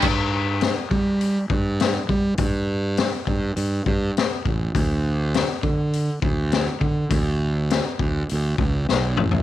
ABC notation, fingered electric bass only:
X:1
M:4/4
L:1/8
Q:1/4=102
K:D
V:1 name="Fingered electric bass" clef=bass
G,,3 G,2 G,,2 G, | G,,3 G,, G,, G,, z A,,, | D,,3 D,2 D,,2 D, | D,,3 D,, D,, C,, B,,, A,,, |]